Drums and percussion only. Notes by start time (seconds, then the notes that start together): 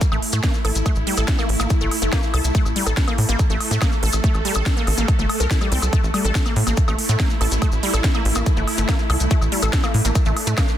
0.01 kick, closed hi-hat, maracas
0.12 high woodblock, maracas
0.22 open hi-hat
0.33 closed hi-hat, maracas
0.43 kick, snare, closed hi-hat, high woodblock, maracas
0.54 maracas
0.65 open hi-hat, high woodblock
0.75 closed hi-hat, maracas
0.86 kick, closed hi-hat, high woodblock, maracas
0.95 maracas
1.07 open hi-hat
1.17 closed hi-hat, high woodblock, maracas
1.28 kick, snare, closed hi-hat, maracas
1.39 high woodblock, maracas
1.49 open hi-hat
1.60 closed hi-hat, high woodblock, maracas
1.70 kick, closed hi-hat, maracas
1.81 maracas
1.91 open hi-hat, high woodblock
2.02 closed hi-hat, maracas
2.13 kick, snare, closed hi-hat, high woodblock, maracas
2.23 maracas
2.34 open hi-hat, high woodblock
2.44 closed hi-hat, maracas
2.55 kick, closed hi-hat, maracas
2.65 high woodblock, maracas
2.76 open hi-hat
2.87 closed hi-hat, high woodblock, maracas
2.97 kick, snare, closed hi-hat, maracas
3.08 high woodblock, maracas
3.18 open hi-hat
3.29 closed hi-hat, maracas
3.39 kick, closed hi-hat, high woodblock, maracas
3.50 maracas
3.60 open hi-hat, high woodblock
3.71 closed hi-hat, maracas
3.82 kick, snare, closed hi-hat, high woodblock, maracas
3.92 maracas
4.03 open hi-hat
4.13 closed hi-hat, high woodblock, maracas
4.24 kick, closed hi-hat, maracas
4.34 high woodblock, maracas
4.45 open hi-hat
4.54 closed hi-hat, high woodblock, maracas
4.66 kick, snare, closed hi-hat, maracas
4.77 maracas
4.87 open hi-hat, high woodblock
4.97 closed hi-hat, maracas
5.08 kick, closed hi-hat, high woodblock, maracas
5.19 maracas
5.29 open hi-hat, high woodblock
5.40 closed hi-hat, maracas
5.51 kick, snare, closed hi-hat, maracas
5.61 high woodblock, maracas
5.72 open hi-hat
5.82 closed hi-hat, high woodblock, maracas
5.93 kick, closed hi-hat, high woodblock, maracas
6.04 maracas
6.14 open hi-hat, high woodblock
6.25 closed hi-hat, maracas
6.35 kick, snare, closed hi-hat, maracas
6.46 high woodblock, maracas
6.56 open hi-hat
6.67 closed hi-hat, high woodblock, maracas
6.77 kick, closed hi-hat, maracas
6.88 high woodblock, maracas
6.99 open hi-hat
7.09 closed hi-hat, maracas
7.20 kick, snare, closed hi-hat, high woodblock, maracas
7.30 maracas
7.41 open hi-hat, high woodblock
7.51 closed hi-hat, maracas
7.62 kick, closed hi-hat, high woodblock, maracas
7.72 maracas
7.83 open hi-hat
7.94 closed hi-hat, high woodblock, maracas
8.04 kick, snare, closed hi-hat, maracas
8.14 high woodblock, maracas
8.25 open hi-hat
8.35 high woodblock, maracas
8.46 kick, closed hi-hat, maracas
8.57 maracas
8.67 open hi-hat, high woodblock
8.78 closed hi-hat, maracas
8.89 kick, snare, closed hi-hat, high woodblock, maracas
8.99 maracas
9.10 open hi-hat, high woodblock
9.20 closed hi-hat, maracas
9.30 kick, closed hi-hat, maracas
9.41 high woodblock, maracas
9.52 open hi-hat
9.62 closed hi-hat, high woodblock, maracas
9.73 kick, snare, closed hi-hat, maracas
9.83 high woodblock, maracas
9.94 open hi-hat
10.05 closed hi-hat, maracas
10.15 kick, closed hi-hat, high woodblock, maracas
10.26 maracas
10.37 open hi-hat, high woodblock
10.47 closed hi-hat, maracas
10.57 kick, snare, closed hi-hat, high woodblock, maracas
10.68 maracas